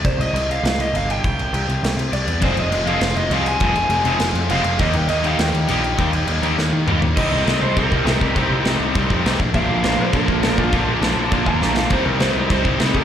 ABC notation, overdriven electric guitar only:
X:1
M:4/4
L:1/8
Q:1/4=202
K:Cm
V:1 name="Overdriven electric guitar"
c e2 f f e f g- | g4- g z d2 | c e2 f f e f a- | a4- a z f2 |
e g e f g4- | g6 z2 | e3 c B2 B G- | G z6 z |
f3 c B2 B F- | F z4 b2 f | c B c G c z2 B |]